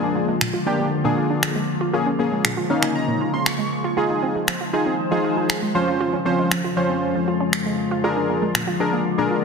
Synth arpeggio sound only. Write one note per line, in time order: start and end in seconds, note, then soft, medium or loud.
0.03 0.13 D4 medium
0.15 0.25 A#3 medium
0.28 0.38 G#3 medium
0.41 0.51 A#2 medium
0.54 0.63 F4 medium
0.66 0.76 D4 loud
0.79 0.89 A#3 medium
1.04 1.14 A#2 medium
1.18 1.27 F4 medium
1.30 1.40 D4 medium
1.55 1.65 G#3 medium
1.81 1.91 F4 loud
1.93 2.03 F4 medium
2.06 2.16 C#4 medium
2.19 2.29 A#3 medium
2.32 2.41 G#3 medium
2.44 2.54 A#2 medium
2.57 2.67 F4 medium
2.70 2.80 C#4 loud
2.83 2.92 A#3 medium
3.08 3.18 A#2 medium
3.21 3.30 F4 medium
3.34 3.43 C#4 medium
3.59 3.69 G#3 medium
3.84 3.94 F4 loud
3.97 4.07 F4 loud
4.10 4.20 D#4 medium
4.22 4.32 C4 medium
4.35 4.45 G#3 medium
4.48 4.58 F3 medium
4.61 4.70 F4 medium
4.73 4.83 D#4 loud
4.86 4.96 C4 medium
5.11 5.21 F3 medium
5.24 5.34 F4 medium
5.37 5.47 D#4 medium
5.62 5.72 G#3 medium
5.88 5.98 F4 medium
6.00 6.10 F4 loud
6.13 6.23 C#4 medium
6.26 6.36 C4 medium
6.39 6.48 G#3 medium
6.52 6.61 F3 medium
6.64 6.74 F4 medium
6.77 6.87 C#4 medium
6.90 6.99 C4 medium
7.15 7.25 F3 medium
7.28 7.37 F4 medium
7.40 7.50 C#4 medium
7.66 7.76 G#3 medium
7.91 8.01 F4 loud
8.04 8.14 F4 loud
8.17 8.26 D4 medium
8.29 8.39 A#3 medium
8.42 8.52 G#3 medium
8.55 8.64 A#2 medium
8.67 8.77 F4 medium
8.80 8.90 D4 medium
8.93 9.03 A#3 medium
9.18 9.28 A#2 medium
9.31 9.41 F4 medium